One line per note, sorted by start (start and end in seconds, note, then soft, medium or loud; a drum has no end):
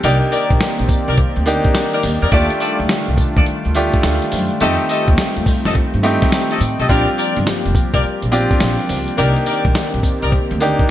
0.00 0.18 C2 loud
0.00 6.85 D#3 medium
0.00 2.29 A#3 medium
0.00 1.00 A#3 medium
0.00 2.29 C4 medium
0.00 0.22 D#4 loud
0.00 2.28 G4 loud
0.00 0.22 A#4 medium
0.00 2.29 D5 medium
0.00 0.22 D5 loud
0.00 closed hi-hat medium
0.00 tambourine medium
0.04 1.00 D4 medium
0.04 1.00 D#4 medium
0.04 1.00 G4 loud
0.22 closed hi-hat medium
0.31 0.50 D#4 medium
0.31 0.50 A#4 medium
0.31 0.51 D5 medium
0.31 closed hi-hat medium
0.31 tambourine medium
0.50 0.58 A#1 medium
0.50 kick loud
0.50 closed hi-hat medium
0.60 snare loud
0.60 closed hi-hat medium
0.60 tambourine medium
0.79 0.87 A#1 medium
0.79 closed hi-hat soft
0.89 kick loud
0.89 closed hi-hat medium
0.89 tambourine medium
1.07 1.15 C2 medium
1.07 1.18 D#4 medium
1.07 1.18 A#4 medium
1.07 1.18 D5 medium
1.07 closed hi-hat medium
1.18 muted upright bass stroke medium
1.18 kick loud
1.18 closed hi-hat medium
1.36 1.58 D2 medium
1.36 closed hi-hat medium
1.46 2.21 A#3 loud
1.46 2.21 D4 medium
1.46 2.21 D#4 medium
1.46 2.21 G4 loud
1.46 closed hi-hat medium
1.46 tambourine medium
1.65 kick loud
1.65 closed hi-hat medium
1.74 snare loud
1.74 closed hi-hat medium
1.74 tambourine loud
1.93 2.03 D#4 medium
1.93 2.03 A#4 medium
1.93 2.04 D5 medium
1.93 closed hi-hat medium
2.03 2.18 D#2 loud
2.03 open hi-hat medium
2.03 tambourine medium
2.22 2.30 E2 medium
2.22 2.32 D#4 medium
2.22 2.32 A#4 medium
2.22 2.31 D5 medium
2.22 closed hi-hat medium
2.31 2.46 D#2 loud
2.31 9.14 G3 medium
2.31 6.85 A3 medium
2.31 3.28 A3 medium
2.31 4.58 D4 medium
2.31 3.29 D4 medium
2.31 2.50 F4 loud
2.31 6.85 F4 medium
2.31 3.29 F4 medium
2.31 2.50 G4 medium
2.31 3.29 G4 loud
2.31 2.51 A4 loud
2.31 2.51 D5 loud
2.31 kick loud
2.31 closed hi-hat medium
2.31 tambourine medium
2.50 closed hi-hat medium
2.60 2.79 F4 medium
2.60 2.79 G4 medium
2.60 2.79 A4 medium
2.60 2.79 D5 medium
2.60 closed hi-hat medium
2.60 tambourine medium
2.79 2.87 D2 medium
2.79 closed hi-hat medium
2.89 snare loud
2.89 closed hi-hat medium
2.89 tambourine medium
3.08 3.15 C2 medium
3.08 closed hi-hat medium
3.18 kick loud
3.18 closed hi-hat medium
3.18 tambourine medium
3.36 3.44 D#2 medium
3.36 3.46 F4 medium
3.36 3.46 G4 medium
3.36 3.46 A4 medium
3.36 3.47 D5 medium
3.36 kick loud
3.36 closed hi-hat medium
3.46 muted upright bass stroke medium
3.46 closed hi-hat medium
3.65 3.87 D2 medium
3.65 closed hi-hat medium
3.75 4.49 A3 medium
3.75 4.50 D4 medium
3.75 4.50 F4 medium
3.75 4.50 G4 loud
3.75 closed hi-hat medium
3.75 tambourine medium
3.94 kick loud
3.94 closed hi-hat medium
4.03 4.18 D2 medium
4.03 snare loud
4.03 closed hi-hat medium
4.03 tambourine loud
4.22 closed hi-hat medium
4.32 4.46 F#2 medium
4.32 open hi-hat medium
4.32 tambourine medium
4.51 closed hi-hat soft
4.60 4.75 F2 loud
4.60 5.57 A3 medium
4.60 6.87 C4 medium
4.60 5.57 C4 medium
4.60 5.57 D#4 medium
4.60 4.79 G4 loud
4.60 5.57 G4 loud
4.60 4.79 A4 loud
4.60 4.80 D#5 loud
4.60 closed hi-hat medium
4.60 tambourine medium
4.79 closed hi-hat medium
4.89 5.08 G4 medium
4.89 5.08 A4 medium
4.89 5.08 D#5 medium
4.89 closed hi-hat medium
4.89 tambourine medium
5.08 5.15 D#2 medium
5.08 kick medium
5.08 closed hi-hat medium
5.18 snare loud
5.18 closed hi-hat medium
5.18 tambourine loud
5.36 5.44 D#2 medium
5.36 closed hi-hat soft
5.46 kick loud
5.46 open hi-hat medium
5.46 tambourine medium
5.65 5.72 F2 medium
5.65 5.75 G4 medium
5.65 5.75 A4 medium
5.65 5.75 D#5 medium
5.65 snare medium
5.65 closed hi-hat medium
5.75 muted upright bass stroke soft
5.75 kick medium
5.75 closed hi-hat medium
5.94 6.15 G2 medium
5.94 closed hi-hat medium
6.03 6.78 A3 medium
6.03 6.78 C4 medium
6.03 6.78 D#4 medium
6.03 6.78 G4 loud
6.03 closed hi-hat medium
6.03 tambourine medium
6.22 kick loud
6.22 snare medium
6.22 closed hi-hat medium
6.32 snare loud
6.32 closed hi-hat medium
6.32 tambourine loud
6.51 6.61 G4 medium
6.51 6.61 A4 medium
6.51 6.61 D#5 medium
6.51 closed hi-hat medium
6.61 6.74 A2 medium
6.61 closed hi-hat medium
6.61 tambourine medium
6.79 6.87 B1 medium
6.79 6.88 G4 medium
6.79 6.89 A4 medium
6.79 6.89 D#5 medium
6.79 closed hi-hat soft
6.89 7.03 A#1 loud
6.89 9.15 F3 medium
6.89 10.91 A#3 medium
6.89 7.85 C4 medium
6.89 7.85 D4 medium
6.89 7.86 F4 medium
6.89 9.15 G4 medium
6.89 7.08 G4 loud
6.89 7.86 G4 medium
6.89 7.08 A#4 loud
6.89 10.91 D5 medium
6.89 7.08 D5 loud
6.89 kick loud
6.89 closed hi-hat medium
6.89 tambourine medium
7.08 closed hi-hat medium
7.17 7.36 G4 medium
7.17 7.36 A#4 medium
7.17 7.36 D5 medium
7.17 closed hi-hat medium
7.17 tambourine medium
7.37 7.44 G1 loud
7.37 closed hi-hat medium
7.47 snare loud
7.47 closed hi-hat medium
7.47 tambourine loud
7.65 7.73 F1 medium
7.65 closed hi-hat soft
7.75 kick loud
7.75 closed hi-hat medium
7.75 tambourine medium
7.93 8.01 C2 medium
7.93 8.03 G4 medium
7.93 8.04 A#4 medium
7.93 8.04 D5 medium
7.93 kick medium
7.93 closed hi-hat medium
8.04 muted upright bass stroke soft
8.04 closed hi-hat medium
8.22 8.44 A#1 medium
8.22 closed hi-hat medium
8.32 9.06 C4 loud
8.32 9.06 D4 medium
8.32 9.07 F4 medium
8.32 9.07 G4 loud
8.32 closed hi-hat medium
8.32 tambourine medium
8.51 kick loud
8.51 closed hi-hat medium
8.60 8.75 A#1 medium
8.60 snare loud
8.60 closed hi-hat medium
8.60 tambourine loud
8.79 closed hi-hat medium
8.89 9.03 C#2 medium
8.89 open hi-hat medium
8.89 tambourine medium
9.08 closed hi-hat medium
9.17 9.32 C2 loud
9.17 10.91 D#3 medium
9.17 10.14 A#3 medium
9.17 10.91 C4 medium
9.17 10.14 D4 medium
9.17 9.36 D#4 loud
9.17 10.14 D#4 medium
9.17 10.91 G4 medium
9.17 10.14 G4 loud
9.17 9.36 A#4 loud
9.17 9.36 D5 loud
9.17 closed hi-hat medium
9.17 tambourine medium
9.36 closed hi-hat medium
9.46 9.65 D#4 medium
9.46 9.65 A#4 medium
9.46 9.65 D5 medium
9.46 closed hi-hat medium
9.46 tambourine medium
9.65 9.72 A#1 loud
9.65 kick loud
9.65 closed hi-hat medium
9.75 snare loud
9.75 closed hi-hat medium
9.75 tambourine loud
9.94 10.01 A#1 medium
9.94 closed hi-hat medium
10.03 kick medium
10.03 closed hi-hat medium
10.03 tambourine medium
10.22 10.30 C2 medium
10.22 10.32 D#4 medium
10.22 10.32 A#4 medium
10.22 10.32 D5 medium
10.22 closed hi-hat medium
10.32 muted upright bass stroke medium
10.32 kick loud
10.32 closed hi-hat medium
10.51 10.72 D2 medium
10.51 closed hi-hat medium
10.61 10.91 A#3 medium
10.61 10.91 D4 medium
10.61 10.91 D#4 medium
10.61 10.91 G4 loud
10.61 closed hi-hat medium
10.61 tambourine medium
10.79 kick loud
10.79 closed hi-hat medium